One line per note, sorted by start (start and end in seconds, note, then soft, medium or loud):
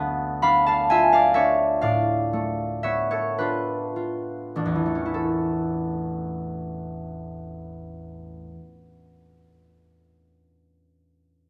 0.00 3.00 D2 medium
0.00 2.32 A3 soft
0.00 2.83 B3 soft
0.00 0.42 D4 medium
0.00 0.42 F5 medium
0.00 0.65 A5 loud
0.00 0.41 B5 loud
0.42 1.35 D4 soft
0.42 0.67 F5 medium
0.42 4.32 B5 medium
0.67 1.11 F5 medium
0.67 1.07 A5 medium
0.90 3.39 F4 medium
0.90 1.33 E5 medium
0.90 1.31 G#5 medium
1.13 1.81 D5 medium
1.13 1.54 F5 medium
1.34 3.39 D4 soft
1.34 2.83 C#5 medium
1.34 2.17 E5 medium
1.81 5.20 A2 soft
1.81 5.19 D5 medium
1.81 5.19 F5 medium
2.33 4.85 A3 soft
2.83 5.20 B3 soft
2.83 3.09 C#5 medium
2.83 6.73 E5 medium
3.11 5.13 A4 soft
3.11 3.59 C#5 medium
3.38 4.55 D4 soft
3.38 3.95 F4 soft
3.38 5.20 B4 medium
3.96 5.20 F4 soft
4.56 8.46 A1 soft
4.56 5.20 D4 soft
4.66 8.56 E2 soft
4.76 8.66 E3 soft
4.86 8.74 A3 soft
4.95 8.84 C#4 soft
5.06 8.94 E4 soft
5.14 9.03 A4 soft